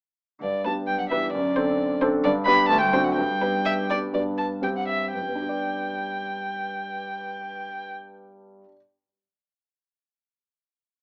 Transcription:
0.39 grand piano G2, cello D3, violin D5
0.63 cello A3, grand piano B3 D4 G4, violin B4 A5
0.87 cello G3, violin G5
0.98 cello F#3, violin F#5
1.09 cello E3, grand piano B3 D4 G4, violin B4 E5
1.32 grand piano F#2, cello D3, violin D5
1.56 grand piano C4 D4 A4, violin C5
2.01 grand piano C4 D4 A4, violin C5
2.24 grand piano G2, cello D3, violin D5
2.45 cello B3, grand piano B3 D4 G4, violin B4 B5
2.68 grand piano D2, cello A3, violin A5
2.81 cello G3, violin G5
2.93 grand piano C4 D4 F#4, violin C5
3.04 cello F#3, violin F#5
3.15 grand piano G2, cello G3, violin G5
3.42 grand piano B3 D4 G4, violin B4
3.66 violin E5
3.90 grand piano B3 D4 G4, violin D5
4.13 grand piano G2 B3 D4 G4, violin D5
4.38 violin A5
4.61 grand piano G2 C4 G4, violin G5
4.77 violin F#5
4.88 violin E5
5.14 grand piano G2, violin G5
5.21 grand piano G3
5.28 grand piano B3
5.35 grand piano D4
5.42 grand piano G4
5.49 grand piano D5

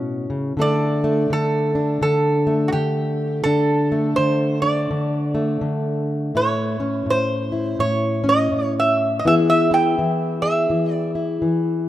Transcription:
Already playing: steel-string acoustic guitar A2 B2 C#4 E4
0.30 steel-string acoustic guitar C#3
0.57 steel-string acoustic guitar D3 A3 D4 A4
0.61 resonator guitar played with a steel bar D5
1.04 steel-string acoustic guitar A3
1.30 steel-string acoustic guitar D3, resonator guitar played with a steel bar A4
1.75 steel-string acoustic guitar D4
2.02 steel-string acoustic guitar D3, resonator guitar played with a steel bar A4
2.47 steel-string acoustic guitar A3
2.68 resonator guitar played with a steel bar F#4
2.72 steel-string acoustic guitar D3, resonator guitar played with a steel bar G4
3.44 steel-string acoustic guitar D3 D4, resonator guitar played with a steel bar A4
3.92 steel-string acoustic guitar A3
4.16 steel-string acoustic guitar D3, resonator guitar played with a steel bar C5
4.62 steel-string acoustic guitar D4, resonator guitar played with a steel bar D5
4.91 steel-string acoustic guitar D3
5.35 steel-string acoustic guitar A3
5.61 steel-string acoustic guitar D3
6.35 steel-string acoustic guitar A2 E4, resonator guitar played with a steel bar C#5
6.80 steel-string acoustic guitar C#4
7.06 steel-string acoustic guitar A2
7.10 resonator guitar played with a steel bar C5
7.52 steel-string acoustic guitar E4
7.79 steel-string acoustic guitar A2, resonator guitar played with a steel bar C#5
8.24 steel-string acoustic guitar C#4
8.29 resonator guitar played with a steel bar D#5
8.52 steel-string acoustic guitar A2
8.80 resonator guitar played with a steel bar E5
9.19 resonator guitar played with a steel bar D#5
9.25 steel-string acoustic guitar E3 B3 E4 G#4, resonator guitar played with a steel bar E5
9.50 resonator guitar played with a steel bar E5
9.71 steel-string acoustic guitar E4, resonator guitar played with a steel bar G5
9.99 steel-string acoustic guitar E3
10.42 steel-string acoustic guitar G#4, resonator guitar played with a steel bar E5
10.70 steel-string acoustic guitar E3
10.93 resonator guitar played with a steel bar D5
11.15 steel-string acoustic guitar E4
11.42 steel-string acoustic guitar E3

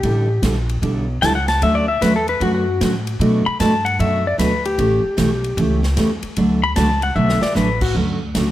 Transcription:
Already playing: pedal steel guitar G4
0.03 upright bass A1, steel-string acoustic guitar D3 G3 D4 E4 A4, ride
0.42 upright bass A#1, steel-string acoustic guitar D3 G3 D4 E4 A4, snare, hi-hat pedal, ride
0.69 ride
0.82 upright bass B1, steel-string acoustic guitar D3 G3 D4 E4 A4, ride
1.21 upright bass C#2, steel-string acoustic guitar D3 G3 D4 E4 A4, pedal steel guitar A5, snare, hi-hat pedal, ride
1.35 pedal steel guitar F#5
1.48 pedal steel guitar A5, snare, ride
1.61 upright bass D2, steel-string acoustic guitar D3 F#3 A3 C#4 F#4, pedal steel guitar E5, ride
1.75 pedal steel guitar D5
1.88 pedal steel guitar E5
2.01 upright bass E2, steel-string acoustic guitar D3 F#3 A3 C#4 F#4, pedal steel guitar B4, snare, hi-hat pedal, ride
2.16 pedal steel guitar A4
2.28 pedal steel guitar B4, ride
2.40 upright bass F#2, steel-string acoustic guitar D3 F#3 A3 C#4 F#4, pedal steel guitar F#4, ride
2.55 pedal steel guitar F#4
2.81 upright bass A2, steel-string acoustic guitar D3 F#3 A3 C#4 F#4, snare, hi-hat pedal, ride
3.07 ride
3.19 upright bass B2, steel-string acoustic guitar B2 F#3 A3 D4 F#4, ride
3.46 pedal steel guitar B5, muted upright bass stroke
3.60 upright bass G2, steel-string acoustic guitar B2 F#3 A3 D4 F#4, pedal steel guitar A5, snare, hi-hat pedal, ride
3.85 pedal steel guitar F#5, ride
3.99 upright bass F#2, steel-string acoustic guitar B2 F#3 A3 D4 F#4, pedal steel guitar E5, ride
4.27 pedal steel guitar D5
4.38 upright bass D2, steel-string acoustic guitar B2 F#3 A3 D4 F#4, pedal steel guitar B4, snare, hi-hat pedal, ride
4.65 pedal steel guitar G4, ride
4.78 upright bass A1, steel-string acoustic guitar C#3 E3 A3 C#4 G4, ride
5.04 muted upright bass stroke
5.17 upright bass B1, steel-string acoustic guitar C#3 E3 A3 C#4 G4, snare, hi-hat pedal, ride
5.44 ride
5.57 upright bass C#2, steel-string acoustic guitar C#3 E3 A3 C#4 G4, ride
5.83 snare
5.97 upright bass E2, steel-string acoustic guitar C#3 E3 A3 C#4 G4, snare, hi-hat pedal, ride
6.23 muted upright bass stroke, ride
6.36 upright bass D2, steel-string acoustic guitar D3 F#3 A3 D4 F#4 B4, ride
6.63 pedal steel guitar B5
6.76 upright bass C#2, steel-string acoustic guitar D3 F#3 A3 D4 F#4 B4, pedal steel guitar A5, snare, hi-hat pedal, ride
7.02 pedal steel guitar F#5, ride
7.16 upright bass B1, steel-string acoustic guitar D3 F#3 A3 D4 F#4 B4, pedal steel guitar E5
7.29 snare
7.41 pedal steel guitar D5, muted upright bass stroke, snare
7.55 upright bass A1, steel-string acoustic guitar D3 F#3 A3 D4 F#4 B4, pedal steel guitar B4, snare, hi-hat pedal
7.81 pedal steel guitar F#4, kick, crash
7.95 upright bass D2, steel-string acoustic guitar D3 F#3 A3 C#4 F#4
8.35 upright bass C#2, steel-string acoustic guitar D3 F#3 A3 C#4 F#4, snare, hi-hat pedal, ride

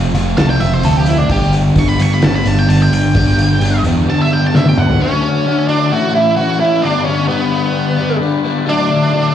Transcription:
Already playing: picked electric bass F1, distorted electric guitar F2 C3 F3 A3 C4 F4, overdriven electric guitar F3 A3 C4 F4
0.13 picked electric bass F1, distorted electric guitar F2 F3, overdriven electric guitar C4 F4, open hi-hat
0.17 distorted electric guitar C3, overdriven electric guitar A3
0.37 picked electric bass C2, overdriven electric guitar F3 A3 C4 F4, lead electric guitar A5, snare, open hi-hat
0.50 lead electric guitar G5
0.60 picked electric bass F1, overdriven electric guitar A3 C4 F4, lead electric guitar E5, open hi-hat
0.74 lead electric guitar C5
0.83 picked electric bass D2, overdriven electric guitar F3 A3 C4 F4, lead electric guitar A4, open hi-hat
0.97 lead electric guitar G4
1.06 lead electric guitar E4, open hi-hat
1.18 lead electric guitar D4
1.29 picked electric bass G1, overdriven electric guitar G2 D3 G3 B3 D4, lead electric guitar G4, distorted electric guitar G4, kick, open hi-hat
1.53 overdriven electric guitar G3 B3 D4, open hi-hat
1.74 picked electric bass G1, overdriven electric guitar D3 G3 B3 D4, kick, open hi-hat
1.79 lead electric guitar C#6
1.89 lead electric guitar B5
1.98 picked electric bass G1, distorted electric guitar G2 D3 G4, overdriven electric guitar G3 B3 D4, open hi-hat
2.02 lead electric guitar C#6
2.14 lead electric guitar B5
2.21 picked electric bass G1, overdriven electric guitar G2 D3 G3 B3 D4, lead electric guitar A5, snare, open hi-hat
2.36 lead electric guitar B5
2.44 picked electric bass G1, overdriven electric guitar G3 B3 D4, lead electric guitar A5, open hi-hat
2.59 lead electric guitar G5
2.67 picked electric bass G1, overdriven electric guitar D3 G3 B3 D4, lead electric guitar A5, open hi-hat
2.82 lead electric guitar G5
2.90 picked electric bass G1, lead electric guitar G5, open hi-hat
3.14 picked electric bass G1, overdriven electric guitar G2 D3 G3 B3 D4, distorted electric guitar G4, kick, open hi-hat
3.37 picked electric bass G1, overdriven electric guitar G3 B3 D4, open hi-hat
3.60 picked electric bass G1, overdriven electric guitar D3 G3 B3 D4, open hi-hat
3.83 picked electric bass E2, distorted electric guitar G2 D3 G4, overdriven electric guitar G3 B3 D4, open hi-hat
4.07 overdriven electric guitar G2 D3 G3 B3 D4, lead electric guitar A5
4.22 lead electric guitar E5
4.31 overdriven electric guitar G3 B3 D4, lead electric guitar G5
4.46 lead electric guitar A5
4.53 overdriven electric guitar D3 G3 B3 D4, lead electric guitar E5, snare
4.66 tonewheel organ B3 C4, lead electric guitar G5, high tom
4.71 tonewheel organ D4 E4
4.77 tonewheel organ F4 G4, lead electric guitar F#5, mid tom
4.82 tonewheel organ A4 B4
4.89 tonewheel organ C5 D5, floor tom
4.94 tonewheel organ E5 F5
4.99 overdriven electric guitar D3 A3 D4 F#4, tonewheel organ D3 F#3 A3 A4, lead electric guitar C#4
5.22 overdriven electric guitar A3 D4 F#4
5.45 overdriven electric guitar D3 A3 D4 F#4
5.68 lead electric guitar D4
5.90 overdriven electric guitar A2 E3 A3, tonewheel organ E3 A3 C#4 A4, lead electric guitar F#4
5.94 overdriven electric guitar C#4 E4
6.15 overdriven electric guitar A3 C#4 E4, lead electric guitar E4
6.37 overdriven electric guitar E3 A3 C#4 E4, lead electric guitar F#4
6.60 overdriven electric guitar A3 C#4 E4, lead electric guitar E4
6.82 overdriven electric guitar G2 D3 G3 B3 D4, tonewheel organ G3 B3 D4 B4, lead electric guitar D4
7.04 overdriven electric guitar B3 D4, lead electric guitar C#4
7.09 overdriven electric guitar G3
7.28 overdriven electric guitar G2 D3 G3 B3 D4, lead electric guitar B3
7.98 overdriven electric guitar G3 B3 D4
8.20 overdriven electric guitar D3 G3 B3 D4
8.44 overdriven electric guitar G3 B3 D4
8.65 overdriven electric guitar D3 F#3 A3, tonewheel organ F#3 A3 D4 A4
8.69 overdriven electric guitar D4, lead electric guitar D4
8.90 overdriven electric guitar F#3 A3 D4
9.13 overdriven electric guitar D3 F#3 A3 D4

